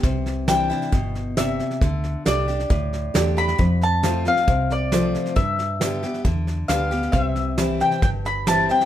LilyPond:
<<
  \new Staff \with { instrumentName = "Mandolin" } { \time 4/4 \key c \major \tempo 4 = 135 r4 g''2 e''4~ | e''4 d''2~ d''8 b''8~ | b''8 a''4 f''4 d''4. | e''2 r4 f''4 |
e''4 r8 g''8 g''8 b''8 a''8 g''8 | }
  \new Staff \with { instrumentName = "Upright piano" } { \time 4/4 \key c \major r4 <e' c'' d''>8 r4. <e' c'' d''>8 r8 | r4 <g' a' d''>8 r4. <g' a' d''>8 r8 | r4 <f' a' c''>8 r4. <f' a' c''>8 r8 | r4 <g' b' d''>8 r4. <g' b' d''>8 r8 |
r4 <g' c'' e''>8 r4. <g' c'' e''>8 r8 | }
  \new Staff \with { instrumentName = "Steel-string acoustic guitar" } { \time 4/4 \key c \major << { r4 <e g d' e'>8 <d' e'>8 r2 | r4 <d a d' g'>8 <d' g'>8 r4 <d a d' g'>8 <d' g'>8 | r4 <f a c' f'>8 <c' f'>8 r4 <f a c' f'>4 | r4 <d g b g'>8 <b g'>8 r4 <d g b g'>8 <b g'>8 |
r4 <e g c' e'>4 r4 <e g c' e'>8 <c' e'>8 | } \\ { c2 b,4 c4 | d2 a,2 | f,2 c2 | g,2 d2 |
c2 g,2 | } >> }
  \new Staff \with { instrumentName = "Fingered electric bass" } { \clef bass \time 4/4 \key c \major c,2 g,,2 | d,4 c,4 d,4 e,4 | f,2 c,2 | g,2 e,4 d,4 |
c,2 g,,2 | }
  \new DrumStaff \with { instrumentName = "Drums" } \drummode { \time 4/4 <bd sn>8 sn8 <hhp sn>8 sn16 sn16 <bd sn>8 sn8 <hhp sn>8 sn16 sn16 | <bd sn>8 sn8 <hhp sn>8 sn16 sn16 <bd sn>8 sn8 <hhp sn>8 sn16 sn16 | <bd sn>8 sn8 <hhp sn>8 sn16 sn16 <bd sn>8 sn8 <hhp sn>8 sn16 sn16 | <bd sn>8 sn8 <hhp sn>8 sn16 sn16 <bd sn>8 sn8 <hhp sn>8 sn16 sn16 |
<bd sn>8 sn8 <hhp sn>8 sn16 sn16 <bd sn>8 sn8 <hhp sn>8 sn16 sn16 | }
>>